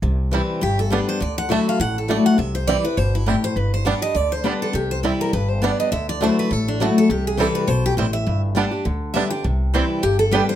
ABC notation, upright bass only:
X:1
M:4/4
L:1/8
Q:"Swing" 1/4=204
K:Clyd
V:1 name="Upright bass" clef=bass
C,,4 G,,,4 | D,,4 A,,,4 | C,,4 G,,,4 | G,,,4 D,,4 |
C,,4 G,,,4 | D,,4 A,,,4 | C,,4 B,,,2 A,,,2 | G,,,4 D,,4 |
C,,4 G,,,4 |]